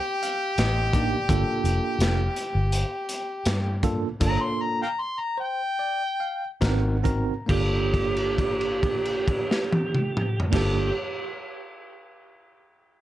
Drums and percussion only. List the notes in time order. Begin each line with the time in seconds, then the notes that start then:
0.23 closed hi-hat
0.58 snare, closed hi-hat
0.93 kick, closed hi-hat
1.29 kick, closed hi-hat
1.65 closed hi-hat
2.00 snare, closed hi-hat
2.36 closed hi-hat
2.72 closed hi-hat
3.09 closed hi-hat
3.46 snare, closed hi-hat
3.83 kick, closed hi-hat
4.21 kick, closed hi-hat, crash
6.62 kick, snare, closed hi-hat
7.05 kick, closed hi-hat
7.49 kick, crash
7.94 kick, crash
8.16 crash
8.38 kick, crash
8.61 crash
8.83 kick, crash
9.05 crash
9.28 kick, crash
9.51 snare
9.73 high tom
9.95 mid tom
10.17 mid tom
10.40 floor tom
10.53 kick, snare, crash